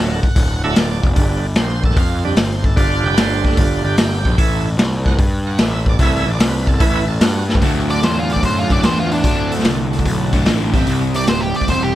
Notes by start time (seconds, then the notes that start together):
Already playing: D1 F#3 A3 D4
0.00 E5
0.07 F5
0.12 F#5
0.23 kick
0.36 D1, kick, open hi-hat
0.63 D1 F#3 A3 D4 E5
0.76 D1 D5, snare, open hi-hat
0.91 D5
1.03 F1, kick
1.15 G1 D3 G3 D4, kick, open hi-hat
1.55 A#1 C5, snare, open hi-hat
1.84 A4, kick
1.91 snare
1.97 F2 F4, kick, open hi-hat
2.25 D3 G3 D4 G4
2.36 G1 C5, snare, open hi-hat
2.64 A4, kick
2.76 G1 D3 G3 D4 F4, kick, open hi-hat
3.04 F1 G4
3.15 G1 B4 C5, snare, open hi-hat
3.45 A4, kick, snare
3.52 snare
3.57 G1 F4, kick, open hi-hat
3.84 G1 D3 G3 D4 G4
3.98 G1 G4, snare, open hi-hat
4.25 A#1, kick
4.38 A1 E3 A3 E4, kick, open hi-hat
4.78 C2, snare, open hi-hat
5.06 F#5, kick, snare
5.18 G2, kick, open hi-hat
5.47 F#5
5.58 A1 E5, snare, open hi-hat
5.86 D5, kick
5.99 C2 E3 A3 E4 E5, kick, open hi-hat
6.27 A1 D5
6.40 C2 B4, snare, open hi-hat
6.67 A4, kick
6.80 A1 E3 A3 E4 B4, kick, open hi-hat
7.08 A4
7.21 G2 F#4, snare, open hi-hat
7.49 A4, snare
7.55 kick
7.61 D2 A2 D3 A3 D4 F#4 A4, kick, open hi-hat
7.88 A3 D4 F#4 A4 D5, open hi-hat
8.03 E2 C5, snare, open hi-hat
8.19 F4
8.30 A3 D4 F#4 A4 D5, open hi-hat
8.36 kick
8.43 F#2 C5, kick, open hi-hat
8.59 F4
8.70 D2 A2 D3 D5, kick, open hi-hat
8.83 D2 E2 A2 D3 C5, snare, open hi-hat
9.00 F4
9.11 D4, open hi-hat
9.23 D2 A2 A3 D4 F#4 A4, kick, open hi-hat
9.27 D3
9.51 A3 D4 F#4 A4, open hi-hat
9.59 snare
9.64 C2, snare, open hi-hat
9.91 A3 D4 F#4 A4, open hi-hat
9.99 kick
10.05 B1, kick, open hi-hat
10.32 D2 A2 D3, kick, open hi-hat
10.46 A1 D2 A2 D3, snare, open hi-hat
10.73 C3 G3 C4 E4 G4, kick, open hi-hat
10.87 C2, open hi-hat
11.14 G3 C4 E4 G4 D5, open hi-hat
11.27 D1 C5, snare, open hi-hat
11.41 G4
11.55 G3 C4 E4 G4 D5, muted picked electric bass stroke, open hi-hat
11.61 kick
11.68 E1 C3 G3 C4 C5, kick, open hi-hat
11.83 G4